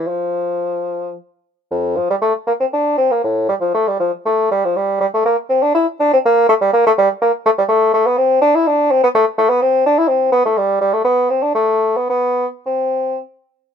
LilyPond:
\new Staff \with { instrumentName = "Bassoon" } { \time 3/4 \key f \major \tempo 4 = 120 f2 r4 | f,8 f16 g16 a8 bes16 c'16 d'8 c'16 bes16 | a,8 g16 f16 a16 g16 f8 a8 g16 f16 | g8 g16 a16 bes8 c'16 d'16 e'8 d'16 c'16 |
bes8 a16 g16 bes16 a16 g8 bes8 a16 g16 | \key c \major a8 a16 b16 c'8 d'16 e'16 d'8 c'16 b16 | a8 a16 b16 c'8 d'16 e'16 c'8 b16 a16 | g8 g16 a16 b8 c'16 d'16 a8. b16 |
b8. r16 c'4 r4 | }